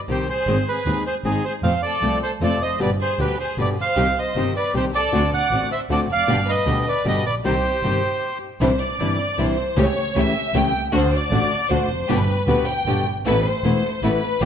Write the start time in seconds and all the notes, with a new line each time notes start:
0.08 C2 C3 D#3 G3 C4 G4 C5
0.28 G#4 C5
0.47 G#1 D#3 G#3 C4 D#4 G#4
0.68 G#4 B4
0.86 D#2 D#3 G#3 C4 D#4 G#4
1.07 G#4 C5
1.24 G#1 D#3 G#3 C4 D#4 G#4
1.45 G#4 C5
1.63 F2 C3 F3 A3 C4 F4 C5 F5
1.83 A4 D5
2.02 C2 C3 F3 A3 C4 F4
2.23 A4 C5
2.41 F2 C3 F3 A3 C4 F4 A4 D5
2.61 F1 C5 D#5
2.79 G1 B2 D3 G3 B3 G4 B4 D5
3.00 G#4 C5
3.19 D2 B2 D3 G3 B3 G4 B4
3.40 G#4 C5
3.58 G1 B2 D3 G3 B3 G4 B4 D5
3.78 C5 F5
3.96 C2 C3 D#3 G3 C4 D#4 G4
4.17 C5 D#5
4.35 G1 C3 D#3 G3 C4 D#4 G4
4.56 B4 D5
4.74 C2 C3 D#3 G3 C4 D#4 G4 C5
4.94 C2 A4 D5
5.12 D2 D3 A3 C4 D4 F#4
5.33 D5 F#5
5.51 A1 D3 A3 C4 D4 F#4
5.72 C5 E5
5.89 D2 D3 A3 C4 D4 F#4 A4 D5
6.09 F1 D5 F5
6.27 G1 B2 D3 G3 B3 D4 G4
6.48 B4 D#5
6.66 D2 B2 D3 G3 B3 D4 G4
6.87 B4 D5
7.05 G1 B2 D3 G3 B3 D4 G4 B4 D#5
7.25 A#1 B4 D5
7.44 C2 C3 D#3 G3 C4 D#4 G4 C5
7.83 G1 C3 D#3 G3 C4 D#4 G4
8.61 C2 C3 E3 G3 C4 D4 E4 C5
8.81 D5
9.00 G1 C3 E3 G3 C4 D4 E4
9.38 C2 C3 E3 G3 C4 D4 E4 C5
9.76 C#2 C#3 E3 A3 C#4 G4
9.81 C#5
10.15 C#2 C#3 E3 A3 C#4 G4 E5
10.54 C#2 C#3 E3 A3 C#4 G4 G5
10.73 C2
10.92 D2 D3 A3 D4 F#4 C5
11.14 D5
11.31 A1 D3 A3 D4 F#4
11.70 D2 D3 A3 D4 F#4 C5
11.90 F1
12.09 G1 B2 D3 G3 B3 D4 G4 B4
12.47 D2 B2 D3 G3 B3 D4 G4 B4
12.68 G5
12.86 G1 B2 D3 G3 B3 D4 G4
13.05 G1
13.25 A1 E3 A3 B3 E4 A4 B4
13.45 C5
13.64 E1 E3 A3 B3 E4 A4
14.03 A1 E3 A3 B3 E4 A4 B4
14.41 A1 F3 G3 A3 F4 G4 C5